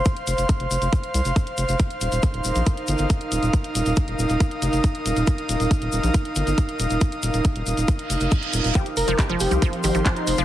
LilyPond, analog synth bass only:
\new Staff \with { instrumentName = "Analog synth bass" } { \clef bass \time 4/4 \key ees \mixolydian \tempo 4 = 138 r8 f,,16 f,,16 r16 f,,16 f,,16 f,,16 r8 c,16 f,,16 r8 f,,16 f,,16 | r8 ees,,16 ees,,16 r16 ees,,16 ees,,16 bes,,16 r8 g,,16 g,,16 r8 ees,,16 ees,,16 | r8 ees,,16 ees,,16 r16 ees,,16 ees,,16 ees,,16 r8 f,,16 f,,16 r8 ees,,16 ees,,16 | r8 ees,,16 ees,,16 r16 ees,,16 ees,,16 bes,,16 r8 g,,16 g,,16 r8 ees,,16 ees,,16 |
r8 ees,,16 ees,,16 r16 ees,,16 ees,,16 ees,,16 r8 f,,16 f,,16 r8 ees,,16 ees,,16 | r8 f,,16 f,,16 r16 f,,16 f,,16 c,16 r8 aes,,16 aes,,16 r8 f,,16 f,,16 | }